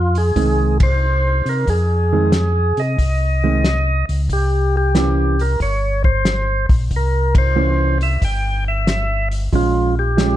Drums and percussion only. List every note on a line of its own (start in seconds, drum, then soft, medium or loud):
0.15 open hi-hat soft
0.36 kick soft
0.36 open hi-hat medium
0.80 kick medium
0.80 ride medium
1.46 open hi-hat soft
1.67 kick soft
1.67 open hi-hat soft
2.32 snare medium
2.32 closed hi-hat soft
2.77 open hi-hat soft
2.98 kick soft
2.98 open hi-hat soft
3.64 snare medium
3.64 closed hi-hat soft
4.09 open hi-hat soft
4.29 kick soft
4.29 open hi-hat soft
4.95 snare medium
4.95 closed hi-hat medium
5.39 open hi-hat soft
5.60 kick soft
5.60 open hi-hat soft
6.04 kick medium
6.25 snare medium
6.25 closed hi-hat medium
6.69 kick medium
6.69 open hi-hat soft
6.91 kick soft
6.91 open hi-hat soft
7.35 kick medium
7.35 ride medium
8.01 open hi-hat soft
8.22 kick soft
8.22 open hi-hat medium
8.87 snare medium
8.87 closed hi-hat soft
9.31 open hi-hat soft
9.53 kick soft
9.53 open hi-hat soft
10.18 snare medium
10.18 closed hi-hat medium